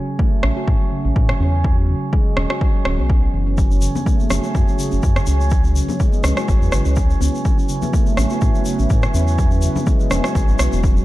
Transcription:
0.19 handpan A3, kick
0.43 analog synth bass A1, handpan C#4, cross-stick
0.56 handpan F#4
0.67 analog synth bass A2, kick
0.80 handpan F#3
0.92 handpan C#3
1.05 analog synth bass A1, handpan C#4
1.16 analog synth bass A2, kick
1.29 cross-stick
1.40 analog synth bass E2, handpan C#4
1.64 handpan F#3, kick
1.78 handpan C#4
1.89 handpan C#3
2.13 handpan G#3, kick
2.37 analog synth bass E1, handpan C#4, cross-stick
2.50 handpan F#4, cross-stick
2.61 kick
2.74 handpan F#3
2.85 analog synth bass D1, handpan C#4, cross-stick
2.98 analog synth bass B1, handpan B3
3.10 kick
3.34 analog synth bass F#1, handpan E3
3.47 handpan C#4
3.58 handpan F#3, analog synth pad A3 C#4 F#4 G#4 C#5, kick, shaker
3.71 handpan C#4, shaker
3.81 handpan C#3, shaker
3.95 high conga, low conga, shaker
4.06 handpan A3, kick, shaker
4.20 high conga, shaker
4.30 analog synth bass F#1, handpan C#4, cross-stick, high conga, low conga, shaker
4.43 handpan F#4, shaker
4.55 analog synth bass F#2, kick, shaker
4.67 handpan F#3, shaker
4.78 handpan C#3, shaker
4.92 analog synth bass F#1, handpan C#4, shaker
5.03 analog synth bass F#2, kick, shaker
5.16 cross-stick, shaker
5.26 analog synth bass C#2, handpan C#4, shaker
5.41 shaker
5.50 handpan F#3, analog synth pad G#3 E4 B4, kick, shaker
5.64 handpan C#4, shaker
5.76 handpan C#3, shaker
5.88 high conga, low conga, shaker
6.00 handpan G#3, kick, shaker
6.12 high conga, shaker
6.24 analog synth bass C#2, handpan C#4, cross-stick, high conga, low conga, shaker
6.37 handpan F#4, cross-stick, shaker
6.48 analog synth bass G#1, kick, shaker
6.61 analog synth bass E2, handpan F#3, shaker
6.72 analog synth bass G#1, handpan C#3, cross-stick, shaker
6.85 analog synth bass C#2, handpan C#4, shaker
6.96 kick, shaker
7.10 shaker
7.21 analog synth bass C#2, handpan C#4, high conga, shaker
7.35 shaker
7.45 handpan F#3, analog synth pad A3 B3 B4 E5, kick, shaker
7.58 handpan C#4, shaker
7.69 handpan C#3, shaker
7.82 high conga, low conga, shaker
7.93 handpan A3, kick, shaker
8.06 high conga, shaker
8.17 analog synth bass A1, handpan C#4, cross-stick, high conga, low conga, shaker
8.30 handpan F#4, shaker
8.41 analog synth bass A2, kick, shaker
8.55 handpan F#3, shaker
8.65 handpan C#3, shaker
8.79 analog synth bass A1, handpan C#4, shaker
8.90 analog synth bass A2, kick, shaker
9.02 cross-stick, shaker
9.14 analog synth bass E2, handpan C#4, shaker
9.28 shaker
9.38 handpan F#3, analog synth pad G#3, kick, shaker
9.51 handpan C#4, shaker
9.62 handpan C#3, shaker
9.76 high conga, low conga, shaker
9.86 handpan G#3, kick, shaker
9.99 high conga, shaker
10.11 analog synth bass E1, handpan C#4, cross-stick, high conga, low conga, shaker
10.24 handpan F#4, cross-stick, shaker
10.35 analog synth bass B1, kick, shaker
10.48 analog synth bass G#1, handpan F#3, shaker
10.59 analog synth bass B1, handpan F#3, cross-stick, shaker
10.72 analog synth bass E1, handpan B3, shaker
10.83 handpan C#4, kick, shaker
10.96 analog synth bass D1, handpan F#3, shaker

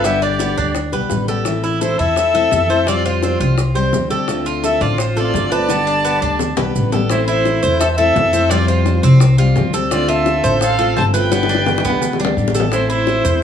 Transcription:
Already playing: upright bass G1
0.04 steel-string acoustic guitar D3 G3 B3 G4, cuban tres B3, trumpet G4, violin E5, high bongo, maracas
0.22 cuban tres D4, trumpet G4, violin D5, high bongo, maracas
0.39 cuban tres B3, high bongo, maracas
0.57 upright bass D2, cuban tres D4, maracas
0.75 muted steel-string acoustic guitar stroke, high bongo, maracas
0.92 upright bass B1, steel-string acoustic guitar G3 B3 G4, cuban tres B4, high bongo, maracas
1.10 upright bass A1, steel-string acoustic guitar D3 G3 B3 G4, high bongo, low bongo, maracas
1.28 steel-string acoustic guitar G3 B3 G4, cuban tres A4, maracas
1.45 steel-string acoustic guitar E3 A3 C4 E4, high bongo, maracas
1.63 cuban tres E4, high bongo, maracas
1.81 trumpet E4, cuban tres A4, violin C5, high bongo, maracas
1.99 upright bass E2, cuban tres E4, trumpet A4, violin E5, maracas
2.16 muted steel-string acoustic guitar stroke, high bongo, maracas
2.34 steel-string acoustic guitar A3 C4 E4, cuban tres A4, high bongo, maracas
2.51 upright bass F2, steel-string acoustic guitar E3 A3 C4 E4, high bongo, low bongo, maracas
2.69 steel-string acoustic guitar A3 C4 E4, cuban tres C5, maracas
2.86 steel-string acoustic guitar F3 G3 C4 G4, cuban tres C4, trumpet F4, violin D5, high bongo, maracas
3.04 trumpet F4, cuban tres F4, violin C5, high bongo, maracas
3.23 cuban tres C4, high bongo, maracas
3.40 upright bass C2, cuban tres F4, maracas
3.58 muted steel-string acoustic guitar stroke, high bongo, maracas
3.75 steel-string acoustic guitar G3 C4 G4, cuban tres C5, high bongo, maracas
3.93 upright bass D2, steel-string acoustic guitar F3 G3 C4 G4, high bongo, low bongo, maracas
4.10 steel-string acoustic guitar G3 C4 G4, cuban tres A4, maracas
4.28 steel-string acoustic guitar D3 A3 C4 F4, high bongo, maracas
4.45 cuban tres F4, high bongo, maracas
4.64 cuban tres A4, trumpet A4, violin E5, high bongo, maracas
4.81 upright bass A1, cuban tres F4, trumpet F4, violin D5, maracas
4.98 trumpet F4, violin C5, muted steel-string acoustic guitar stroke, high bongo, maracas
5.16 steel-string acoustic guitar A3 C4 F4, cuban tres A4, high bongo, maracas
5.22 trumpet F4, violin D5
5.34 upright bass G1, steel-string acoustic guitar D3 A3 C4 F4, high bongo, low bongo, maracas
5.51 steel-string acoustic guitar A3 C4 F4, cuban tres B4, trumpet D5, violin A5, maracas
5.69 steel-string acoustic guitar D3 G3 B3 G4, cuban tres B3, high bongo, maracas
5.87 cuban tres D4, maracas
6.05 cuban tres B3, maracas
6.21 upright bass D2, cuban tres D4, maracas
6.39 muted steel-string acoustic guitar stroke, low bongo, maracas
6.57 upright bass B1, steel-string acoustic guitar G3 B3 G4, cuban tres B4, low bongo, maracas
6.74 upright bass A1, steel-string acoustic guitar D3 G3 B3 G4, maracas
6.92 steel-string acoustic guitar G3 B3 G4, cuban tres A4, low bongo, maracas
7.10 steel-string acoustic guitar E3 A3 C4 E4, trumpet E4, violin C5, high bongo, maracas
7.27 trumpet E4, cuban tres E4, violin C5, maracas
7.45 high bongo, maracas
7.63 upright bass E2, cuban tres C5, high bongo, maracas
7.79 trumpet A4, violin E5, muted steel-string acoustic guitar stroke, high bongo, maracas
7.96 steel-string acoustic guitar A3 C4 E4, trumpet A4, cuban tres A4, violin E5, high bongo, maracas
8.16 upright bass F2, steel-string acoustic guitar E3 A3 C4 E4, high bongo, low bongo, maracas
8.33 steel-string acoustic guitar A3 C4 E4, cuban tres C5, high bongo, maracas
8.49 steel-string acoustic guitar F3 G3 C4 G4, cuban tres C4, trumpet F4, violin D5, high bongo, maracas
8.68 trumpet F4, cuban tres F4, violin C5, maracas
8.86 high bongo, maracas
9.03 upright bass C2, cuban tres C4, high bongo, maracas
9.20 muted steel-string acoustic guitar stroke, high bongo, maracas
9.38 steel-string acoustic guitar G3 C4 G4, cuban tres F4, high bongo, maracas
9.56 upright bass D2, steel-string acoustic guitar F3 G3 C4 G4, high bongo, low bongo, maracas
9.73 steel-string acoustic guitar G3 C4 G4, cuban tres A4, high bongo, maracas
9.91 steel-string acoustic guitar D3 A3 C4 F4, trumpet F4, violin D5, high bongo, maracas
10.08 cuban tres F4, trumpet A4, violin E5, maracas
10.26 high bongo, maracas
10.44 upright bass A1, cuban tres C5, high bongo, maracas
10.61 trumpet A4, violin F5, muted steel-string acoustic guitar stroke, high bongo, maracas
10.79 steel-string acoustic guitar A3 C4 F4, cuban tres A4, high bongo, maracas
10.96 upright bass G1, steel-string acoustic guitar D3 A3 C4, trumpet C5, violin A5, high bongo, low bongo, maracas
11.14 steel-string acoustic guitar A3 C4 F4, cuban tres B4, trumpet B4, violin G5, high bongo, maracas
11.31 steel-string acoustic guitar D3 G3 B3 G4, cuban tres B3, high bongo, maracas
11.43 high bongo
11.49 cuban tres D4, maracas
11.55 high bongo
11.66 low bongo, maracas
11.78 high bongo
11.84 upright bass D2, cuban tres B3, maracas
11.90 low bongo
12.01 muted steel-string acoustic guitar stroke, low bongo, maracas
12.13 low bongo
12.19 steel-string acoustic guitar G3 B3 G4, cuban tres D4, maracas
12.25 low bongo
12.37 upright bass A1, steel-string acoustic guitar D3 G3 B3 G4, maracas
12.48 low bongo
12.54 steel-string acoustic guitar G3 B3 G4, cuban tres A4, maracas
12.60 low bongo
12.71 steel-string acoustic guitar E3 A3 C4 E4, trumpet E4, violin C5, high bongo, maracas
12.90 cuban tres E4, trumpet E4, violin C5, maracas
13.07 high bongo, maracas
13.25 upright bass E2, cuban tres C5, high bongo, maracas

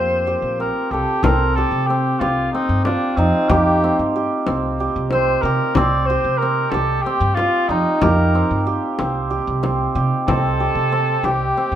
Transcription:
Already playing: upright bass F2, hammered dulcimer A#3 C4 F4 G4, cor anglais C5
0.27 hammered dulcimer G4
0.42 upright bass A#1
0.60 hammered dulcimer C4, cor anglais A#4
0.91 upright bass C2, cor anglais G4, hammered dulcimer A4
1.23 upright bass C2, hammered dulcimer C4, cor anglais A#4, frame drum
1.55 hammered dulcimer G4, cor anglais A4
1.71 upright bass C3
1.87 hammered dulcimer C4, cor anglais G4
2.20 upright bass C2, cor anglais F4, hammered dulcimer G4, frame drum
2.52 hammered dulcimer C4, cor anglais D#4, frame drum
2.69 upright bass G2
2.84 cor anglais D4, hammered dulcimer F4, frame drum
3.16 upright bass F2, cor anglais C4, hammered dulcimer D#4
3.49 upright bass F2, cor anglais G4, hammered dulcimer G4, frame drum
3.84 hammered dulcimer C4
3.99 upright bass G2
4.16 hammered dulcimer G4
4.47 upright bass C2, hammered dulcimer C4, frame drum
4.79 hammered dulcimer G4, frame drum
4.96 upright bass C2
5.11 hammered dulcimer C4, cor anglais C5, frame drum
5.41 upright bass C3, cor anglais A#4
5.45 hammered dulcimer G4
5.75 upright bass C2, hammered dulcimer C4, cor anglais D5, frame drum
6.06 cor anglais C5
6.10 hammered dulcimer G4
6.24 upright bass C3
6.37 cor anglais A#4
6.42 hammered dulcimer C4
6.69 upright bass C2, cor anglais A4, frame drum
6.74 hammered dulcimer G4
7.02 cor anglais G4, frame drum
7.06 hammered dulcimer C4
7.20 upright bass G2
7.35 cor anglais F4, frame drum
7.39 hammered dulcimer F4
7.68 upright bass F2, cor anglais D#4, hammered dulcimer D#4
8.02 upright bass F2, hammered dulcimer G4, cor anglais A#4, frame drum
8.35 hammered dulcimer C4
8.51 upright bass G2
8.66 hammered dulcimer G4, frame drum
8.99 upright bass C2, hammered dulcimer C4, frame drum
9.30 hammered dulcimer G4, frame drum
9.47 upright bass C2
9.63 hammered dulcimer C4, frame drum
9.95 upright bass C3, hammered dulcimer G4
10.27 upright bass C2, hammered dulcimer C4, cor anglais A4, frame drum
10.60 hammered dulcimer G4
10.75 upright bass C3
10.92 hammered dulcimer C4
11.23 upright bass C2, cor anglais G4, hammered dulcimer G4, frame drum
11.56 hammered dulcimer C4, frame drum
11.72 upright bass G2

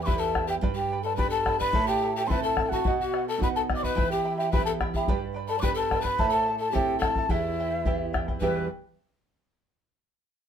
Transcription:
Already playing: nylon-string guitar E2
0.01 pan flute B4 D5, quena B5 D6
0.06 nylon-string guitar B3 E4 G4, charango E4 G4 B4 E5 G5, bombo low
0.18 pan flute A4, quena A5
0.34 charango E4 B4 E5 G5, bombo rim, bombo low
0.47 charango E4 B4 G5, pan flute G4, quena G5
0.61 nylon-string guitar G2, charango G4 B4 D5 G5 B5, bombo low
0.75 pan flute G4, quena G5
0.92 charango B4 D5 G5 B5
1.02 pan flute A4, charango B4 D5 B5, quena A5
1.16 nylon-string guitar B3 D4 G4, charango G4 B4 D5 G5 B5, pan flute B4, quena B5, bombo low
1.30 pan flute A4, quena A5
1.45 charango B4 D5 G5 B5, bombo rim, bombo low
1.59 pan flute B4, charango B4 D5 B5, quena B5, bombo low
1.73 nylon-string guitar A2, charango E4 A4 C5 E5 A5, bombo low
1.87 pan flute G4, quena G5
2.02 charango E4 A4 E5 A5
2.15 charango E4 A4 A5, pan flute G4, quena G5
2.25 nylon-string guitar C4 E4 A4, pan flute B4 C5, quena B5 C6
2.30 charango E4 A4 C5 E5 A5, bombo low
2.42 pan flute A4, quena A5
2.57 charango E4 A4 E5 A5, bombo rim, bombo low
2.69 pan flute F#4, charango A4 A5, quena F#5, bombo low
2.74 charango E4
2.84 nylon-string guitar B2, charango B4 D#5 F#5, bombo low
2.99 pan flute F#4, quena F#5
3.13 charango B4 D#5 F#5, bombo rim
3.28 pan flute A4, charango D#5 F#5, quena A5
3.38 nylon-string guitar B3 D#4 F#4, charango B4 D#5 F#5, bombo low
3.43 pan flute B4, quena B5
3.56 pan flute A4, quena A5
3.69 charango B4 D#5 F#5, bombo rim, bombo low
3.76 pan flute D5, quena D6
3.83 pan flute B4, charango D#5 F#5, quena B5, bombo low
3.95 nylon-string guitar E3, charango E4 G4 E5 G5 B5, bombo low
4.10 pan flute G4, quena G5
4.24 charango E4 E5 G5 B5
4.37 charango E4 E5 B5, pan flute G4, quena G5
4.51 nylon-string guitar B3 E4 G4, charango E4 G4 E5 G5 B5, pan flute B4, quena B5, bombo low
4.65 pan flute A4, quena A5
4.80 charango E4 E5 G5 B5, bombo rim, bombo low
4.94 charango E4 E5 B5, pan flute G4, quena G5, bombo low
5.08 nylon-string guitar G2, charango G4 B4 D5 G5 B5, bombo low
5.34 charango B4 D5 G5 B5
5.48 pan flute A4, charango B4 D5 B5, quena A5
5.58 nylon-string guitar B3, pan flute B4 D5, quena B5 D6
5.62 nylon-string guitar D4 G4, charango G4 B4 D5 G5 B5, bombo low
5.74 pan flute A4, quena A5
5.91 charango B4 D5 G5 B5, bombo rim, bombo low
6.01 pan flute B4, quena B5, charango B5, bombo low
6.05 charango B4 D5
6.18 nylon-string guitar A2, charango E4 A4 C5 E5 A5, bombo low
6.29 pan flute A4
6.34 quena A5
6.46 charango E4 A4 E5 A5
6.58 charango E4 A4 A5, pan flute A4, quena A5
6.71 nylon-string guitar C4 E4 A4, charango E4 C5 E5 A5, pan flute G4, quena G5
6.75 charango A4, bombo low
6.99 pan flute A4, charango E5, quena A5, bombo rim, bombo low
7.03 charango E4 A4 A5
7.16 charango E4 A4 A5, bombo low
7.29 nylon-string guitar E2, pan flute E4, charango E4 G4 B4 E5 G5, quena E5, bombo low
7.59 charango E4 B4 E5 G5
7.70 charango E4 B4 G5
7.85 nylon-string guitar B3 E4 G4, charango E4 G4 B4 E5 G5, bombo low
8.13 charango E4 B4 E5 G5, bombo rim, bombo low
8.28 charango E4 B4 G5, bombo low
8.40 nylon-string guitar E2 B2 E3 G3 B3 G4, charango E4 G4 B4 E5 G5, pan flute B4, quena B4, bombo low

